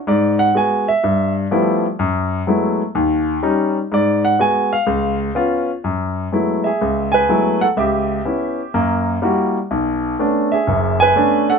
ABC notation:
X:1
M:4/4
L:1/8
Q:"Swing" 1/4=124
K:F#m
V:1 name="Grand piano"
d f g e2 z3 | z8 | d f g ^e2 z3 | z3 [Ge]2 [Bg]2 [Af] |
[=Ge]4 z4 | z3 [Ge]2 [Bg]2 [Af] |]
V:2 name="Grand piano"
G,,2 [G,B,F] z =G,,2 [=F,=G,A,B,E] z | F,,2 [F,G,A,B,E] z ^D,,2 [=G,C^D] z | G,,2 [G,B,F] z C,,2 [B,C^E] z | F,,2 [F,G,A,B,E] z C,,2 [F,G,A,B,E] z |
C,,2 [B,CE] z [F,,^A,]2 [=G,A,EF] z | B,,,2 [A,B,CD] z [F,,,F,,]2 [A,B,CD] z |]